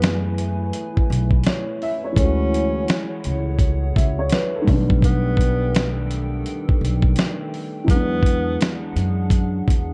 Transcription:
0.00 0.70 F#2 loud
0.00 2.10 E3 medium
0.00 2.14 A3 medium
0.00 2.15 A3 medium
0.00 0.22 B3 loud
0.00 2.13 B3 medium
0.00 2.14 C#4 medium
0.00 4.63 E4 medium
0.00 2.15 G#4 medium
0.00 2.14 B4 medium
0.00 2.14 G#5 medium
0.00 snare loud
0.00 closed hi-hat medium
0.38 closed hi-hat medium
0.73 closed hi-hat medium
0.97 kick medium
1.10 1.42 B1 medium
1.10 closed hi-hat medium
1.31 kick medium
1.44 1.80 C#5 medium
1.44 snare loud
1.44 closed hi-hat medium
1.82 2.04 E5 medium
1.82 open hi-hat medium
2.04 2.38 C#5 medium
2.12 4.61 E3 medium
2.12 4.62 G#3 medium
2.12 4.64 G#4 medium
2.12 4.64 C#5 medium
2.12 4.64 F#5 medium
2.16 2.84 D2 loud
2.16 4.63 A3 medium
2.16 3.08 C#4 loud
2.16 kick loud
2.16 closed hi-hat medium
2.21 4.65 C#4 medium
2.21 4.66 F#4 medium
2.54 closed hi-hat medium
2.88 snare loud
2.88 closed hi-hat medium
3.24 3.92 C#2 medium
3.24 closed hi-hat medium
3.59 kick medium
3.59 closed hi-hat medium
3.96 4.28 C#2 medium
3.96 4.18 E5 medium
3.96 kick medium
3.96 closed hi-hat medium
4.19 4.31 C#5 medium
4.29 4.53 B4 medium
4.29 snare loud
4.29 closed hi-hat medium
4.56 4.89 A4 medium
4.62 7.46 D#3 medium
4.62 7.47 G3 medium
4.67 6.42 B1 medium
4.67 7.85 D#3 medium
4.67 7.49 A3 medium
4.67 7.50 B3 medium
4.67 7.85 A4 medium
4.67 7.85 G5 medium
4.67 kick loud
4.67 open hi-hat soft
4.73 7.51 D4 medium
4.90 kick loud
5.02 5.94 B3 loud
5.02 kick loud
5.02 closed hi-hat medium
5.37 kick medium
5.37 closed hi-hat medium
5.75 snare loud
5.75 closed hi-hat medium
6.11 closed hi-hat medium
6.46 closed hi-hat medium
6.69 kick medium
6.81 7.13 B1 medium
6.81 closed hi-hat medium
7.02 kick medium
7.16 snare loud
7.16 closed hi-hat medium
7.54 open hi-hat soft
7.84 9.94 E3 medium
7.84 9.94 F#3 medium
7.84 kick loud
7.88 8.56 E2 loud
7.88 9.94 G#3 medium
7.88 8.80 B3 loud
7.88 9.94 B3 medium
7.88 9.94 D4 medium
7.88 9.94 G#4 medium
7.88 9.94 F#5 medium
7.88 closed hi-hat medium
7.95 9.94 D4 medium
8.23 kick medium
8.23 closed hi-hat medium
8.61 snare loud
8.61 closed hi-hat medium
8.96 9.63 F#2 medium
8.96 closed hi-hat medium
9.30 kick medium
9.30 closed hi-hat medium
9.68 9.94 E2 medium
9.68 kick medium
9.68 closed hi-hat medium

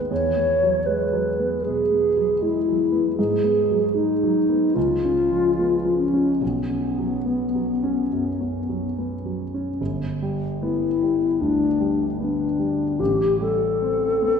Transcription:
0.00 0.13 D#2 soft
0.00 0.13 D#3 soft
0.00 0.13 G#3 soft
0.00 0.13 B3 soft
0.10 1.61 E2 soft
0.10 0.88 C#5 medium
0.37 0.78 B3 soft
0.63 1.04 F#3 soft
0.86 1.29 G#3 soft
0.86 1.65 B4 medium
1.13 1.54 F#3 soft
1.40 1.81 B3 soft
1.63 2.07 B2 soft
1.63 2.44 G#4 medium
1.91 2.32 B3 soft
2.17 2.57 F#3 soft
2.41 2.82 G#3 soft
2.41 3.17 E4 medium
2.68 3.08 F#3 soft
2.92 3.18 B3 soft
3.18 4.72 G#2 soft
3.18 3.96 G#4 medium
3.44 3.86 B3 soft
3.71 4.12 F#3 soft
3.95 4.38 G#3 soft
3.95 4.76 D#4 medium
4.23 4.66 F#3 soft
4.49 4.76 B3 soft
4.75 6.38 C#2 soft
4.75 5.97 F4 medium
5.04 5.47 C#4 soft
5.31 5.75 F3 soft
5.59 6.03 B3 soft
5.85 6.30 F3 soft
5.98 6.43 C#4 medium
6.14 6.42 C#4 soft
6.41 8.08 B1 soft
6.41 8.96 B3 medium
6.70 7.16 C#4 soft
6.99 7.44 F#3 soft
7.25 7.72 B3 soft
7.55 8.01 F#3 soft
7.83 8.29 C#4 soft
8.13 8.57 F#2 soft
8.41 8.85 C#4 soft
8.69 9.13 F#3 soft
8.98 9.42 B3 soft
9.26 9.70 F#3 soft
9.54 9.81 C#4 soft
9.81 11.38 G1 soft
10.22 10.87 G3 soft
10.62 11.26 B3 soft
10.62 11.42 E4 medium
11.03 11.66 G3 soft
11.41 12.05 D2 soft
11.41 12.21 D4 medium
11.80 12.44 G3 soft
12.20 12.84 B3 soft
12.20 13.01 D4 medium
12.59 12.99 G3 soft
13.00 14.40 A1 soft
13.00 13.40 G4 medium
13.41 14.06 G3 soft
13.41 14.40 A4 medium
13.82 14.40 C4 soft
14.22 14.40 B3 soft

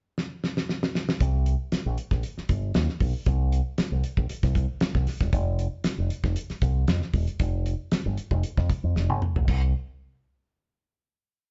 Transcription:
0.18 snare medium
0.44 snare medium
0.57 snare medium
0.69 snare medium
0.83 snare medium
0.95 snare medium
1.09 snare loud
1.20 1.54 C2 medium
1.20 kick loud
1.20 closed hi-hat medium
1.46 closed hi-hat medium
1.72 muted fingered electric bass stroke soft
1.72 snare medium
1.72 closed hi-hat medium
1.86 1.96 A#1 medium
1.98 closed hi-hat medium
2.11 2.21 A#1 medium
2.11 kick medium
2.11 snare soft
2.23 closed hi-hat medium
2.38 muted fingered electric bass stroke soft
2.38 snare soft
2.49 2.71 G1 medium
2.49 kick loud
2.49 closed hi-hat medium
2.74 2.87 D#2 medium
2.74 snare loud
2.74 closed hi-hat medium
2.89 snare soft
3.00 3.12 B1 medium
3.00 kick medium
3.00 open hi-hat medium
3.26 3.60 C2 loud
3.26 kick loud
3.26 closed hi-hat medium
3.52 closed hi-hat medium
3.78 muted fingered electric bass stroke soft
3.78 snare loud
3.78 closed hi-hat medium
3.92 4.02 C2 medium
4.04 closed hi-hat medium
4.17 4.27 A#1 medium
4.17 kick medium
4.29 closed hi-hat medium
4.43 4.65 C2 medium
4.43 kick medium
4.43 snare soft
4.43 closed hi-hat medium
4.55 kick loud
4.55 closed hi-hat medium
4.81 muted fingered electric bass stroke soft
4.81 snare loud
4.81 closed hi-hat medium
4.95 5.05 C2 loud
4.95 kick medium
4.95 snare soft
5.07 snare soft
5.07 open hi-hat medium
5.21 5.31 E1 medium
5.21 kick loud
5.21 snare soft
5.21 closed hi-hat soft
5.33 5.66 F1 loud
5.33 kick loud
5.33 closed hi-hat medium
5.59 closed hi-hat medium
5.84 muted fingered electric bass stroke soft
5.84 snare medium
5.84 closed hi-hat medium
5.98 6.08 F1 medium
6.10 closed hi-hat medium
6.24 6.34 F1 medium
6.24 kick medium
6.24 snare soft
6.36 closed hi-hat medium
6.50 muted fingered electric bass stroke soft
6.50 snare soft
6.50 closed hi-hat soft
6.62 6.84 C2 medium
6.62 kick medium
6.62 closed hi-hat medium
6.88 7.00 F2 medium
6.88 snare loud
6.88 closed hi-hat medium
7.02 snare soft
7.13 7.25 E1 medium
7.13 kick medium
7.13 open hi-hat medium
7.27 closed hi-hat medium
7.39 7.73 F1 medium
7.39 kick loud
7.39 closed hi-hat medium
7.66 closed hi-hat medium
7.92 muted fingered electric bass stroke soft
7.92 snare loud
7.92 closed hi-hat medium
8.06 8.16 G1 medium
8.17 closed hi-hat medium
8.31 8.42 F1 loud
8.31 kick medium
8.43 closed hi-hat medium
8.57 8.68 F2 loud
8.57 kick medium
8.57 snare soft
8.70 kick medium
8.70 closed hi-hat medium
8.84 8.94 F2 medium
8.96 9.09 F1 medium
8.96 snare medium
9.09 9.20 G1 medium
9.09 high tom medium
9.22 mid tom medium
9.36 9.46 A1 medium
9.36 floor tom loud
9.48 9.72 C2 medium
9.48 kick loud
9.48 crash medium

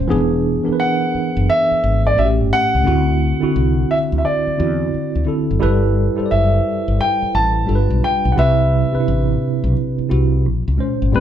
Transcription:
0.00 0.11 A#2 medium
0.00 0.12 G#3 medium
0.00 0.12 C#4 medium
0.00 0.12 C5 medium
0.08 0.56 E1 loud
0.08 0.56 E3 loud
0.08 0.57 B3 loud
0.08 0.57 D4 loud
0.08 0.58 G#4 loud
0.63 1.80 E3 medium
0.63 1.81 B3 medium
0.63 1.81 D4 medium
0.63 0.71 A#4 medium
0.68 muted fretless electric bass stroke soft
0.73 1.84 B4 medium
0.80 1.50 F#5 medium
1.15 muted fretless electric bass stroke soft
1.37 1.46 F#1 medium
1.50 2.01 E5 medium
1.71 muted fretless electric bass stroke soft
1.84 2.11 G#1 medium
2.07 2.17 D5 medium
2.15 2.41 A1 medium
2.15 2.78 A2 medium
2.15 2.79 A3 medium
2.15 2.79 C#4 medium
2.15 2.26 F#4 medium
2.15 2.26 E5 medium
2.25 2.83 G4 medium
2.41 2.50 G1 medium
2.53 3.94 F#5 loud
2.75 2.84 C#2 medium
2.84 3.31 D2 loud
2.84 3.32 D3 medium
2.84 3.33 C4 medium
2.84 3.33 E4 medium
2.84 3.34 F#4 loud
3.40 4.45 D3 medium
3.40 4.46 C4 medium
3.40 4.46 E4 medium
3.40 4.47 F#4 medium
3.40 muted fretless electric bass stroke soft
3.56 3.83 C2 medium
3.91 3.97 E5 medium
4.12 4.22 D2 medium
4.18 4.23 E5 medium
4.25 5.24 D5 medium
4.47 muted fretless electric bass stroke soft
4.57 4.86 E2 medium
4.57 5.20 D3 medium
4.57 5.20 C4 medium
4.57 5.20 E4 medium
4.57 5.21 F#4 medium
4.94 muted fretless electric bass stroke soft
5.15 5.25 D2 medium
5.25 5.57 D3 medium
5.25 5.58 C4 medium
5.25 5.58 E4 medium
5.25 5.59 A4 medium
5.51 5.60 F#1 medium
5.60 6.07 G1 loud
5.60 6.08 G3 loud
5.60 6.08 E4 medium
5.60 6.09 A4 loud
5.60 6.10 B4 loud
6.16 7.32 G3 medium
6.16 7.32 E4 medium
6.16 7.33 A4 medium
6.16 6.23 C5 medium
6.16 muted fretless electric bass stroke soft
6.26 7.37 D5 medium
6.31 6.59 F#1 medium
6.31 7.02 E5 medium
6.88 6.98 G1 medium
7.01 7.32 G5 medium
7.22 muted fretless electric bass stroke soft
7.35 7.62 A1 medium
7.35 8.05 A5 medium
7.66 7.86 G1 medium
7.66 8.29 G3 medium
7.66 8.30 D4 medium
7.66 8.30 F4 medium
7.66 7.77 A4 medium
7.75 8.34 B4 medium
7.90 8.00 B1 medium
8.04 8.34 G5 medium
8.25 8.35 B1 medium
8.32 8.84 C3 medium
8.32 8.37 F#5 medium
8.36 8.82 C2 loud
8.36 8.84 C4 medium
8.36 8.85 E4 medium
8.36 8.86 B4 medium
8.36 9.72 E5 medium
8.92 9.97 C3 medium
8.92 9.98 C4 medium
8.92 8.99 D4 soft
8.92 9.98 B4 medium
8.92 muted fretless electric bass stroke soft
9.00 10.01 E4 medium
9.08 9.35 A1 medium
9.64 9.73 B1 medium
9.99 muted fretless electric bass stroke soft
10.08 10.46 C2 medium
10.08 10.44 C3 medium
10.08 10.44 C4 medium
10.08 10.44 E4 medium
10.08 10.45 F#4 medium
10.46 10.62 A#1 medium
10.68 10.77 C#2 medium
10.77 11.09 A#2 medium
10.77 11.09 G#3 medium
10.77 11.10 C#4 medium
10.77 11.11 C5 medium
11.02 11.11 G#1 medium
11.12 11.20 A1 medium
11.12 11.20 A2 loud
11.12 11.20 G3 medium
11.12 11.20 C4 loud
11.12 11.20 B4 loud

